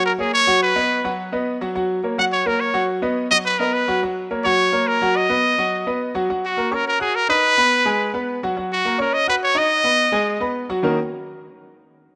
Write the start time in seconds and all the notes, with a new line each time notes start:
Already playing: F#3 F#4 F#5
0.06 A#4
0.18 A#3 G#4 A#4 C#5
0.34 C#5
0.47 F#3 F#4 F#5
0.63 B4
0.76 B3 B4 D#5
1.04 F#3 F#4 F#5
1.32 B3 B4 D#5
1.61 F#3 F#4 F#5
1.75 F#3 F#4 F#5
2.04 A#3 A#4 C#5
2.18 F#3 F#4 F#5
2.32 C#5
2.46 A#3 A#4 C#5
2.60 C#5
2.74 F#3 F#4 F#5
3.02 B3 B4 D#5
3.31 F#3 F#4 D#5 F#5
3.46 B4
3.59 B3 A#4 B4 D#5
3.74 B4
3.88 F#3 F#4 F#5
4.03 F#3 F#4 F#5
4.31 A#3 A#4 C#5
4.44 F#3 F#4 C#5 F#5
4.72 A#3 A#4 C#5
4.87 A#4
5.01 F#3 F#4 F#5
5.16 D#5
5.29 B3 B4 D#5
5.58 F#3 F#4 F#5
5.87 B3 B4 D#5
6.15 F#3 F#4 F#5
6.30 F#3 F#4 F#5
6.45 F#4
6.57 A#3 A#4 A#5
6.71 C#4 A#4 C#5 C#6
6.88 A#4
6.99 F#4 G#4 F#5 F#6
7.15 A#4
7.29 D#4 B4 D#5 D#6
7.57 B3 B4 B5
7.85 G#3 G#4 G#5
8.14 B3 B4 B5
8.43 F#3 F#4 F#5
8.57 F#3 F#4 F#5
8.73 F#4
8.85 A#3 A#4 A#5
8.98 C#4 A#4 C#5 C#6
9.14 D#5
9.28 F#4 B4 F#5 F#6
9.44 C#5
9.55 D#4 D#5 D#6
9.84 B3 B4 B5
10.12 G#3 G#4 G#5
10.40 B3 B4 B5
10.69 F#3 F#4 F#5
10.83 D#3 A#3 C#4 D#4 F#4 A#4